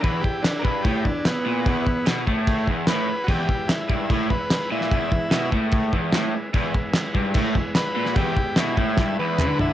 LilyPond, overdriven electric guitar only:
\new Staff \with { instrumentName = "Overdriven electric guitar" } { \clef bass \time 4/4 \key e \major \tempo 4 = 148 e,8 e,8 r8 g,8 a,8 e,8 r8 ais,8 | e,8 e,8 b,8 a,4 e,8 a,8 r8 | e,8 e,8 r8 g,8 a,8 e,8 r8 ais,8 | e,8 e,8 b,8 a,4 e,8 a,8 r8 |
e,8 e,8 r8 g,8 a,8 e,8 r8 ais,8 | e,8 e,8 b,8 a,8 g,8 e,8 d4 | }